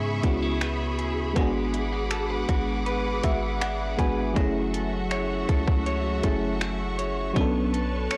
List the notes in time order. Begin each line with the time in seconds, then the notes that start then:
Already playing: G#2 C#3 G#3 B3 C#4 E4 G#4 C#5 E5 B5 C#6
0.23 C#2 G#3 B3 C#4 D4 E4 F#4, kick, closed hi-hat
0.42 E4
0.61 B3, finger snap, closed hi-hat
0.98 D2 G#4, closed hi-hat
1.34 G#1 G#3 B3 D4 F#5 D6, kick, closed hi-hat
1.39 F#4 G#4
1.74 E4, closed hi-hat
1.92 F#4
2.11 A4, finger snap, closed hi-hat
2.30 B4
2.49 G#1 F#4, kick, closed hi-hat
2.86 B4, closed hi-hat
3.23 G#1 F#4 E5, kick, closed hi-hat
3.61 D4 F#5, finger snap, closed hi-hat
3.97 G#1 G#3 B3 D4 F#4 G#4 B4 G#5, kick, closed hi-hat
4.33 F#1 F#3 A3 C#4 F#4 E5 F#5 C#6, kick, closed hi-hat
4.39 E4 G#4
4.74 A4, closed hi-hat
5.11 C#5, finger snap, closed hi-hat
5.49 C#2 A4, kick, closed hi-hat
5.68 C#2, kick
5.86 C#5, closed hi-hat
6.23 F#1 F#3 A3 C#4 E4 G#4 A4, kick, closed hi-hat
6.61 E4, finger snap, closed hi-hat
6.98 C#5, closed hi-hat
7.33 B1 F#3 B3 C#4 B4 C#5 A5, kick, closed hi-hat
7.39 D4 A4
7.74 A4, closed hi-hat
8.11 C#5, finger snap, closed hi-hat